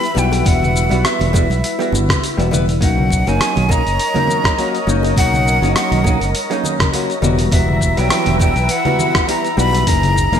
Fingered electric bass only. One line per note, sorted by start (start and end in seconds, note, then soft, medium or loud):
0.16 0.42 B1 medium
0.46 0.88 E1 loud
0.91 1.03 B1 loud
1.21 1.45 E1 loud
1.50 1.61 B1 medium
1.92 2.06 G1 medium
2.38 2.78 E1 medium
2.81 3.23 B1 loud
3.27 3.38 F#1 loud
3.57 3.81 B1 medium
3.86 3.97 F#1 medium
4.87 5.12 F#1 loud
5.16 5.58 B1 loud
5.62 5.73 F#1 loud
5.91 6.16 B1 medium
6.21 6.32 F#1 medium
7.22 7.48 E1 loud
7.52 7.93 E1 medium
7.98 8.09 B1 loud
8.27 8.51 E1 medium
8.56 8.67 B1 medium
9.58 9.83 B1 loud
9.87 10.29 F#1 medium
10.32 10.40 E1 loud